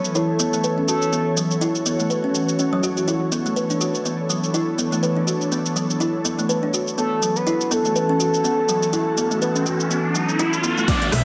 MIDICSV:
0, 0, Header, 1, 8, 480
1, 0, Start_track
1, 0, Tempo, 487805
1, 1108, Time_signature, 4, 2, 24, 8
1, 11060, End_track
2, 0, Start_track
2, 0, Title_t, "Analog synth lead"
2, 0, Program_c, 0, 81
2, 0, Note_on_c, 0, 73, 98
2, 147, Note_on_c, 0, 69, 98
2, 162, Note_off_c, 0, 73, 0
2, 861, Note_off_c, 0, 69, 0
2, 867, Note_on_c, 0, 69, 86
2, 1788, Note_off_c, 0, 69, 0
2, 6867, Note_on_c, 0, 69, 105
2, 7240, Note_on_c, 0, 71, 105
2, 7255, Note_off_c, 0, 69, 0
2, 7589, Note_on_c, 0, 69, 104
2, 7604, Note_off_c, 0, 71, 0
2, 10228, Note_off_c, 0, 69, 0
2, 10708, Note_on_c, 0, 74, 98
2, 10931, Note_off_c, 0, 74, 0
2, 10949, Note_on_c, 0, 76, 110
2, 11060, Note_off_c, 0, 76, 0
2, 11060, End_track
3, 0, Start_track
3, 0, Title_t, "Ambient pad"
3, 0, Program_c, 1, 92
3, 0, Note_on_c, 1, 52, 74
3, 0, Note_on_c, 1, 69, 81
3, 0, Note_on_c, 1, 73, 68
3, 1108, Note_on_c, 1, 66, 68
3, 2989, Note_off_c, 1, 69, 0
3, 3009, Note_off_c, 1, 66, 0
3, 3026, Note_on_c, 1, 59, 67
3, 3026, Note_on_c, 1, 62, 67
3, 3026, Note_on_c, 1, 69, 82
3, 6829, Note_off_c, 1, 52, 0
3, 6829, Note_off_c, 1, 59, 0
3, 6829, Note_off_c, 1, 62, 0
3, 6829, Note_off_c, 1, 69, 0
3, 6830, Note_off_c, 1, 73, 0
3, 6869, Note_on_c, 1, 61, 68
3, 6869, Note_on_c, 1, 66, 68
3, 6869, Note_on_c, 1, 69, 83
3, 6870, Note_on_c, 1, 52, 76
3, 10670, Note_off_c, 1, 61, 0
3, 10670, Note_off_c, 1, 66, 0
3, 10670, Note_off_c, 1, 69, 0
3, 10671, Note_off_c, 1, 52, 0
3, 10706, Note_on_c, 1, 64, 88
3, 10707, Note_on_c, 1, 50, 80
3, 10707, Note_on_c, 1, 62, 74
3, 10708, Note_on_c, 1, 57, 71
3, 11060, Note_off_c, 1, 50, 0
3, 11060, Note_off_c, 1, 57, 0
3, 11060, Note_off_c, 1, 62, 0
3, 11060, Note_off_c, 1, 64, 0
3, 11060, End_track
4, 0, Start_track
4, 0, Title_t, "Kalimba"
4, 0, Program_c, 2, 108
4, 149, Note_on_c, 2, 64, 92
4, 221, Note_off_c, 2, 64, 0
4, 388, Note_on_c, 2, 59, 90
4, 510, Note_off_c, 2, 59, 0
4, 524, Note_on_c, 2, 57, 67
4, 623, Note_off_c, 2, 57, 0
4, 629, Note_on_c, 2, 71, 73
4, 750, Note_off_c, 2, 71, 0
4, 764, Note_on_c, 2, 61, 65
4, 858, Note_off_c, 2, 61, 0
4, 869, Note_on_c, 2, 66, 64
4, 941, Note_off_c, 2, 66, 0
4, 1108, Note_on_c, 2, 59, 70
4, 1236, Note_off_c, 2, 59, 0
4, 1349, Note_on_c, 2, 54, 63
4, 1470, Note_off_c, 2, 54, 0
4, 1588, Note_on_c, 2, 64, 92
4, 1661, Note_off_c, 2, 64, 0
4, 1829, Note_on_c, 2, 59, 86
4, 1950, Note_off_c, 2, 59, 0
4, 1964, Note_on_c, 2, 57, 66
4, 2063, Note_off_c, 2, 57, 0
4, 2068, Note_on_c, 2, 71, 72
4, 2189, Note_off_c, 2, 71, 0
4, 2204, Note_on_c, 2, 61, 66
4, 2298, Note_off_c, 2, 61, 0
4, 2308, Note_on_c, 2, 61, 67
4, 2436, Note_off_c, 2, 61, 0
4, 2547, Note_on_c, 2, 61, 71
4, 2669, Note_off_c, 2, 61, 0
4, 2684, Note_on_c, 2, 54, 88
4, 2783, Note_off_c, 2, 54, 0
4, 2788, Note_on_c, 2, 66, 85
4, 2910, Note_off_c, 2, 66, 0
4, 2924, Note_on_c, 2, 66, 67
4, 3018, Note_off_c, 2, 66, 0
4, 3028, Note_on_c, 2, 64, 83
4, 3101, Note_off_c, 2, 64, 0
4, 3267, Note_on_c, 2, 59, 88
4, 3389, Note_off_c, 2, 59, 0
4, 3402, Note_on_c, 2, 57, 68
4, 3502, Note_off_c, 2, 57, 0
4, 3507, Note_on_c, 2, 71, 74
4, 3629, Note_off_c, 2, 71, 0
4, 3642, Note_on_c, 2, 62, 66
4, 3737, Note_off_c, 2, 62, 0
4, 3747, Note_on_c, 2, 66, 67
4, 3820, Note_off_c, 2, 66, 0
4, 3988, Note_on_c, 2, 59, 73
4, 4116, Note_off_c, 2, 59, 0
4, 4227, Note_on_c, 2, 54, 65
4, 4349, Note_off_c, 2, 54, 0
4, 4468, Note_on_c, 2, 64, 88
4, 4541, Note_off_c, 2, 64, 0
4, 4708, Note_on_c, 2, 59, 85
4, 4829, Note_off_c, 2, 59, 0
4, 4844, Note_on_c, 2, 57, 69
4, 4944, Note_off_c, 2, 57, 0
4, 4948, Note_on_c, 2, 71, 70
4, 5069, Note_off_c, 2, 71, 0
4, 5083, Note_on_c, 2, 62, 63
4, 5178, Note_off_c, 2, 62, 0
4, 5188, Note_on_c, 2, 66, 64
4, 5261, Note_off_c, 2, 66, 0
4, 5429, Note_on_c, 2, 59, 74
4, 5557, Note_off_c, 2, 59, 0
4, 5668, Note_on_c, 2, 54, 68
4, 5790, Note_off_c, 2, 54, 0
4, 5907, Note_on_c, 2, 64, 93
4, 5980, Note_off_c, 2, 64, 0
4, 6148, Note_on_c, 2, 59, 88
4, 6269, Note_off_c, 2, 59, 0
4, 6283, Note_on_c, 2, 57, 69
4, 6383, Note_off_c, 2, 57, 0
4, 6388, Note_on_c, 2, 71, 72
4, 6509, Note_off_c, 2, 71, 0
4, 6523, Note_on_c, 2, 62, 68
4, 6618, Note_off_c, 2, 62, 0
4, 6629, Note_on_c, 2, 66, 65
4, 6701, Note_off_c, 2, 66, 0
4, 6868, Note_on_c, 2, 59, 73
4, 6996, Note_off_c, 2, 59, 0
4, 7108, Note_on_c, 2, 54, 67
4, 7230, Note_off_c, 2, 54, 0
4, 7347, Note_on_c, 2, 64, 95
4, 7421, Note_off_c, 2, 64, 0
4, 7588, Note_on_c, 2, 59, 95
4, 7709, Note_off_c, 2, 59, 0
4, 7723, Note_on_c, 2, 57, 68
4, 7823, Note_off_c, 2, 57, 0
4, 7829, Note_on_c, 2, 71, 77
4, 7950, Note_off_c, 2, 71, 0
4, 7965, Note_on_c, 2, 61, 69
4, 8058, Note_off_c, 2, 61, 0
4, 8068, Note_on_c, 2, 66, 69
4, 8141, Note_off_c, 2, 66, 0
4, 8308, Note_on_c, 2, 59, 74
4, 8436, Note_off_c, 2, 59, 0
4, 8548, Note_on_c, 2, 54, 68
4, 8670, Note_off_c, 2, 54, 0
4, 8789, Note_on_c, 2, 64, 91
4, 8861, Note_off_c, 2, 64, 0
4, 9028, Note_on_c, 2, 59, 87
4, 9150, Note_off_c, 2, 59, 0
4, 9163, Note_on_c, 2, 57, 69
4, 9263, Note_off_c, 2, 57, 0
4, 9268, Note_on_c, 2, 71, 77
4, 9389, Note_off_c, 2, 71, 0
4, 9401, Note_on_c, 2, 61, 68
4, 9497, Note_off_c, 2, 61, 0
4, 9506, Note_on_c, 2, 66, 71
4, 9580, Note_off_c, 2, 66, 0
4, 9748, Note_on_c, 2, 59, 75
4, 9876, Note_off_c, 2, 59, 0
4, 9988, Note_on_c, 2, 54, 69
4, 10110, Note_off_c, 2, 54, 0
4, 10228, Note_on_c, 2, 64, 92
4, 10301, Note_off_c, 2, 64, 0
4, 10467, Note_on_c, 2, 59, 89
4, 10589, Note_off_c, 2, 59, 0
4, 10603, Note_on_c, 2, 57, 70
4, 10703, Note_off_c, 2, 57, 0
4, 10708, Note_on_c, 2, 59, 76
4, 10836, Note_off_c, 2, 59, 0
4, 10949, Note_on_c, 2, 54, 74
4, 11060, Note_off_c, 2, 54, 0
4, 11060, End_track
5, 0, Start_track
5, 0, Title_t, "Analog synth bass"
5, 0, Program_c, 3, 38
5, 10947, Note_on_c, 3, 35, 100
5, 11060, Note_off_c, 3, 35, 0
5, 11060, End_track
6, 0, Start_track
6, 0, Title_t, "Downlifter"
6, 0, Program_c, 4, 103
6, 10707, Note_on_c, 4, 60, 78
6, 11060, Note_off_c, 4, 60, 0
6, 11060, End_track
7, 0, Start_track
7, 0, Title_t, "Riser"
7, 0, Program_c, 5, 103
7, 6868, Note_on_c, 5, 60, 70
7, 10708, Note_off_c, 5, 60, 0
7, 11060, End_track
8, 0, Start_track
8, 0, Title_t, "Drums"
8, 44, Note_on_c, 9, 82, 36
8, 143, Note_off_c, 9, 82, 0
8, 149, Note_on_c, 9, 82, 48
8, 247, Note_off_c, 9, 82, 0
8, 389, Note_on_c, 9, 82, 86
8, 487, Note_off_c, 9, 82, 0
8, 524, Note_on_c, 9, 82, 37
8, 623, Note_off_c, 9, 82, 0
8, 629, Note_on_c, 9, 82, 48
8, 727, Note_off_c, 9, 82, 0
8, 869, Note_on_c, 9, 82, 83
8, 968, Note_off_c, 9, 82, 0
8, 1004, Note_on_c, 9, 82, 36
8, 1102, Note_off_c, 9, 82, 0
8, 1110, Note_on_c, 9, 82, 47
8, 1208, Note_off_c, 9, 82, 0
8, 1350, Note_on_c, 9, 82, 84
8, 1448, Note_off_c, 9, 82, 0
8, 1485, Note_on_c, 9, 82, 36
8, 1583, Note_off_c, 9, 82, 0
8, 1590, Note_on_c, 9, 82, 49
8, 1688, Note_off_c, 9, 82, 0
8, 1724, Note_on_c, 9, 82, 34
8, 1823, Note_off_c, 9, 82, 0
8, 1830, Note_on_c, 9, 82, 83
8, 1928, Note_off_c, 9, 82, 0
8, 1965, Note_on_c, 9, 82, 36
8, 2064, Note_off_c, 9, 82, 0
8, 2071, Note_on_c, 9, 82, 48
8, 2169, Note_off_c, 9, 82, 0
8, 2311, Note_on_c, 9, 82, 80
8, 2409, Note_off_c, 9, 82, 0
8, 2446, Note_on_c, 9, 82, 37
8, 2545, Note_off_c, 9, 82, 0
8, 2551, Note_on_c, 9, 82, 48
8, 2649, Note_off_c, 9, 82, 0
8, 2790, Note_on_c, 9, 82, 81
8, 2888, Note_off_c, 9, 82, 0
8, 2925, Note_on_c, 9, 82, 36
8, 3024, Note_off_c, 9, 82, 0
8, 3030, Note_on_c, 9, 82, 46
8, 3128, Note_off_c, 9, 82, 0
8, 3269, Note_on_c, 9, 82, 85
8, 3368, Note_off_c, 9, 82, 0
8, 3405, Note_on_c, 9, 82, 35
8, 3503, Note_off_c, 9, 82, 0
8, 3510, Note_on_c, 9, 82, 47
8, 3608, Note_off_c, 9, 82, 0
8, 3644, Note_on_c, 9, 82, 33
8, 3742, Note_off_c, 9, 82, 0
8, 3749, Note_on_c, 9, 82, 79
8, 3847, Note_off_c, 9, 82, 0
8, 3885, Note_on_c, 9, 82, 36
8, 3984, Note_off_c, 9, 82, 0
8, 3991, Note_on_c, 9, 82, 45
8, 4089, Note_off_c, 9, 82, 0
8, 4231, Note_on_c, 9, 82, 81
8, 4329, Note_off_c, 9, 82, 0
8, 4365, Note_on_c, 9, 82, 36
8, 4464, Note_off_c, 9, 82, 0
8, 4471, Note_on_c, 9, 82, 45
8, 4569, Note_off_c, 9, 82, 0
8, 4711, Note_on_c, 9, 82, 80
8, 4809, Note_off_c, 9, 82, 0
8, 4847, Note_on_c, 9, 82, 35
8, 4945, Note_off_c, 9, 82, 0
8, 4952, Note_on_c, 9, 82, 46
8, 5050, Note_off_c, 9, 82, 0
8, 5192, Note_on_c, 9, 82, 79
8, 5291, Note_off_c, 9, 82, 0
8, 5327, Note_on_c, 9, 82, 33
8, 5425, Note_off_c, 9, 82, 0
8, 5432, Note_on_c, 9, 82, 46
8, 5530, Note_off_c, 9, 82, 0
8, 5566, Note_on_c, 9, 82, 32
8, 5665, Note_off_c, 9, 82, 0
8, 5671, Note_on_c, 9, 82, 75
8, 5770, Note_off_c, 9, 82, 0
8, 5807, Note_on_c, 9, 82, 34
8, 5906, Note_off_c, 9, 82, 0
8, 5912, Note_on_c, 9, 82, 44
8, 6010, Note_off_c, 9, 82, 0
8, 6151, Note_on_c, 9, 82, 77
8, 6250, Note_off_c, 9, 82, 0
8, 6287, Note_on_c, 9, 82, 35
8, 6386, Note_off_c, 9, 82, 0
8, 6392, Note_on_c, 9, 82, 44
8, 6491, Note_off_c, 9, 82, 0
8, 6631, Note_on_c, 9, 82, 79
8, 6729, Note_off_c, 9, 82, 0
8, 6765, Note_on_c, 9, 82, 34
8, 6863, Note_off_c, 9, 82, 0
8, 6870, Note_on_c, 9, 82, 45
8, 6969, Note_off_c, 9, 82, 0
8, 7110, Note_on_c, 9, 82, 82
8, 7208, Note_off_c, 9, 82, 0
8, 7244, Note_on_c, 9, 82, 34
8, 7343, Note_off_c, 9, 82, 0
8, 7351, Note_on_c, 9, 82, 46
8, 7450, Note_off_c, 9, 82, 0
8, 7487, Note_on_c, 9, 82, 33
8, 7586, Note_off_c, 9, 82, 0
8, 7592, Note_on_c, 9, 82, 76
8, 7690, Note_off_c, 9, 82, 0
8, 7726, Note_on_c, 9, 82, 34
8, 7825, Note_off_c, 9, 82, 0
8, 7831, Note_on_c, 9, 82, 44
8, 7930, Note_off_c, 9, 82, 0
8, 8071, Note_on_c, 9, 82, 77
8, 8169, Note_off_c, 9, 82, 0
8, 8206, Note_on_c, 9, 82, 35
8, 8305, Note_off_c, 9, 82, 0
8, 8310, Note_on_c, 9, 82, 46
8, 8409, Note_off_c, 9, 82, 0
8, 8549, Note_on_c, 9, 82, 75
8, 8648, Note_off_c, 9, 82, 0
8, 8684, Note_on_c, 9, 82, 34
8, 8783, Note_off_c, 9, 82, 0
8, 8790, Note_on_c, 9, 82, 48
8, 8888, Note_off_c, 9, 82, 0
8, 9030, Note_on_c, 9, 82, 80
8, 9128, Note_off_c, 9, 82, 0
8, 9163, Note_on_c, 9, 82, 34
8, 9262, Note_off_c, 9, 82, 0
8, 9269, Note_on_c, 9, 82, 45
8, 9367, Note_off_c, 9, 82, 0
8, 9404, Note_on_c, 9, 82, 34
8, 9502, Note_off_c, 9, 82, 0
8, 9509, Note_on_c, 9, 82, 76
8, 9607, Note_off_c, 9, 82, 0
8, 9644, Note_on_c, 9, 82, 35
8, 9742, Note_off_c, 9, 82, 0
8, 9750, Note_on_c, 9, 82, 45
8, 9848, Note_off_c, 9, 82, 0
8, 9989, Note_on_c, 9, 82, 81
8, 10087, Note_off_c, 9, 82, 0
8, 10124, Note_on_c, 9, 82, 35
8, 10222, Note_off_c, 9, 82, 0
8, 10228, Note_on_c, 9, 82, 45
8, 10326, Note_off_c, 9, 82, 0
8, 10363, Note_on_c, 9, 82, 31
8, 10461, Note_off_c, 9, 82, 0
8, 10468, Note_on_c, 9, 82, 76
8, 10566, Note_off_c, 9, 82, 0
8, 10605, Note_on_c, 9, 82, 34
8, 10703, Note_off_c, 9, 82, 0
8, 10707, Note_on_c, 9, 36, 119
8, 10707, Note_on_c, 9, 42, 66
8, 10709, Note_on_c, 9, 82, 52
8, 10805, Note_off_c, 9, 42, 0
8, 10806, Note_off_c, 9, 36, 0
8, 10808, Note_off_c, 9, 82, 0
8, 10841, Note_on_c, 9, 42, 30
8, 10939, Note_off_c, 9, 42, 0
8, 10946, Note_on_c, 9, 37, 97
8, 10946, Note_on_c, 9, 45, 75
8, 10946, Note_on_c, 9, 46, 97
8, 10948, Note_on_c, 9, 82, 92
8, 10952, Note_on_c, 9, 62, 63
8, 11044, Note_off_c, 9, 37, 0
8, 11044, Note_off_c, 9, 45, 0
8, 11044, Note_off_c, 9, 46, 0
8, 11047, Note_off_c, 9, 82, 0
8, 11050, Note_off_c, 9, 62, 0
8, 11060, End_track
0, 0, End_of_file